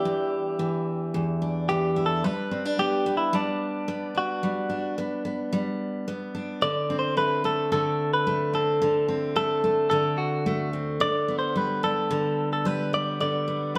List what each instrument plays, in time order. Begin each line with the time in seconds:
Already playing: steel-string acoustic guitar E3 G3 D4 E4, clean electric guitar G4
0.05 steel-string acoustic guitar E2
0.59 steel-string acoustic guitar E3
1.14 steel-string acoustic guitar E2
1.42 steel-string acoustic guitar D4
1.69 steel-string acoustic guitar E3, clean electric guitar G4
1.96 steel-string acoustic guitar E4
2.06 clean electric guitar A4
2.24 steel-string acoustic guitar G3, clean electric guitar B4
2.51 steel-string acoustic guitar C4
2.65 steel-string acoustic guitar D4
2.79 steel-string acoustic guitar B3, clean electric guitar G4
3.06 steel-string acoustic guitar B3
3.17 clean electric guitar E4
3.33 steel-string acoustic guitar G3, clean electric guitar D4
3.88 steel-string acoustic guitar B3
4.15 steel-string acoustic guitar D4, clean electric guitar F#4
4.43 steel-string acoustic guitar G3
4.70 steel-string acoustic guitar D4
4.98 steel-string acoustic guitar B3
5.25 steel-string acoustic guitar B3
5.53 steel-string acoustic guitar G3
6.08 steel-string acoustic guitar B3
6.35 steel-string acoustic guitar D4
6.62 steel-string acoustic guitar D3, clean electric guitar D5
6.90 steel-string acoustic guitar C4
6.99 clean electric guitar C5
7.17 steel-string acoustic guitar A3, clean electric guitar B4
7.44 steel-string acoustic guitar A3, clean electric guitar A4
7.72 steel-string acoustic guitar D3, clean electric guitar A4
8.14 clean electric guitar B4
8.27 steel-string acoustic guitar A3
8.54 steel-string acoustic guitar C4, clean electric guitar A4
8.82 steel-string acoustic guitar D3
9.08 steel-string acoustic guitar C4
9.36 steel-string acoustic guitar A3, clean electric guitar A4
9.64 steel-string acoustic guitar A3
9.90 steel-string acoustic guitar D3, clean electric guitar A4
10.18 clean electric guitar F#4
10.46 steel-string acoustic guitar A3
10.73 steel-string acoustic guitar C4
11.00 steel-string acoustic guitar D3, clean electric guitar D5
11.28 steel-string acoustic guitar B3
11.39 clean electric guitar C5
11.56 steel-string acoustic guitar G3, clean electric guitar B4
11.83 steel-string acoustic guitar G3, clean electric guitar A4
12.11 steel-string acoustic guitar D3
12.53 clean electric guitar A4
12.65 steel-string acoustic guitar G3, clean electric guitar B4
12.93 steel-string acoustic guitar B3, clean electric guitar D5
13.20 steel-string acoustic guitar D3, clean electric guitar D5
13.48 steel-string acoustic guitar B3